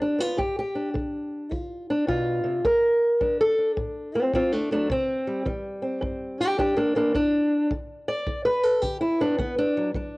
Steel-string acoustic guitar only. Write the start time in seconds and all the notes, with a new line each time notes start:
Already playing: D3 G3
0.02 D4
0.19 B3 F4
0.37 G2 G4
0.59 G4
0.75 D4
0.94 D3
1.51 D3 F4
1.90 D4
2.07 B2 F4
2.44 C3
2.65 D3 A#4
3.20 F#3 D4
3.41 A4
3.58 D4
3.77 A2
4.15 C4 F4
4.34 F#3 C4 F4
4.52 A3 D4
4.71 F#3 A3 D4
4.90 C3 C4
5.27 G3
5.46 E3 G3
5.82 C4
6.01 G2
6.40 D4 G4
6.58 E3 D4 G4
6.77 A#3 D4
6.95 E3 A#3 D4
7.14 G2 D4
7.71 D3
8.08 D5
8.27 D3
8.45 B4
8.63 A4
8.82 D3 G4
9.01 E4
9.20 B3 D4
9.38 D3 B3
9.58 D4
9.77 F#3
9.95 F#3 D4